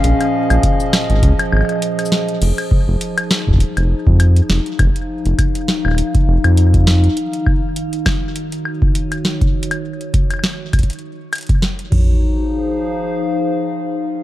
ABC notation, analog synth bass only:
X:1
M:4/4
L:1/16
Q:"Swing 16ths" 1/4=101
K:Fphr
V:1 name="Analog synth bass" clef=bass
B,,, z2 B,,, z3 A,,, D,, z A,,, z4 z | F,,, z2 F,,, z3 E,,, z F,,, z F,,2 z F,,, z | F,,, z2 F,,, z3 E,,, z2 F,,, F,,4 z | z16 |
z16 | z16 |]